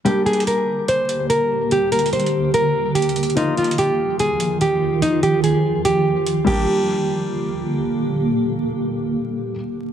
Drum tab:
CC |------------------------|------------------------|------------------------|---------------------x--|
HH |x--xxxx-----x--x--x-----|x--xxxxxx---x-----xxxxxx|x--xxxx-----x--x--x-----|x--x--x-----x-----x-----|
BD |------------------------|------------------------|------------------------|---------------------o--|

CC |------------------------|------------------------|
HH |------------------------|------------------------|
BD |------------------------|------------------------|